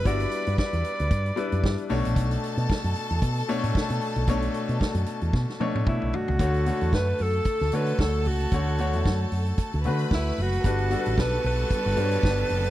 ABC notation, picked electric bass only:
X:1
M:4/4
L:1/16
Q:"Swing 16ths" 1/4=113
K:D
V:1 name="Picked electric bass" clef=bass
G,,,2 z G,, z E,, z D,, G,,2 z F,, G,, z B,,, ^A,,, | B,,,2 z B,, z F,, z E,, B,,2 z A,, z B,, z B,,, | B,,,2 z B,, z F,, z E,, B,, z B,, A,, B,, B,,, z C,, | D,,3 E,, F,,2 F,,2 z D,, D,2 D,,2 C,,2 |
D,,3 E,, F,,2 F,,2 z D,, D,2 D,,2 F,,,2 | G,,,3 A,,, B,,,2 B,,,2 z G,,, G,,2 G,,,2 F,,,2 |]